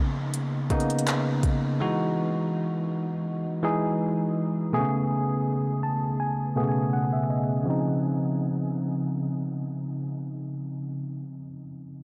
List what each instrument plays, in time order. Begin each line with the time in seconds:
Already playing: tine electric piano C#3 A#3 B3 D#4
0.34 closed hi-hat
0.70 tine electric piano C#3 A#3 B3 D#4, kick, closed hi-hat
0.80 closed hi-hat
0.90 closed hi-hat
0.99 closed hi-hat
1.07 clap, closed hi-hat
1.43 kick, closed hi-hat
1.80 tine electric piano E3 G#3 D#4 F#4
3.63 tine electric piano E3 G#3 D#4 G#4
4.73 tine electric piano B2 A3 B3 G#4
4.79 tine electric piano C#3
5.83 tine electric piano A5
6.20 tine electric piano G#5
6.56 tine electric piano B2 A3 B3 G#4
6.62 tine electric piano C#3
6.69 tine electric piano G#5
6.93 tine electric piano F#5
7.13 tine electric piano E5
7.30 tine electric piano D#5
7.63 tine electric piano C#3 F3
7.68 tine electric piano C4 D#4